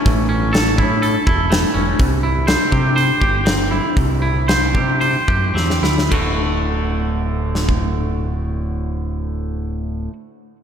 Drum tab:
CC |----------------|----------------|----------------|x---------------|
HH |o---o---o---o---|o---o---o---o---|o---o---o-------|----------------|
SD |----o-------o---|----o-------o---|----o-------oooo|----------o-----|
BD |o-----o---o-----|o-----o---o-----|o-----o---o-----|o----------o----|

CC |----------------|
HH |----------------|
SD |----------------|
BD |----------------|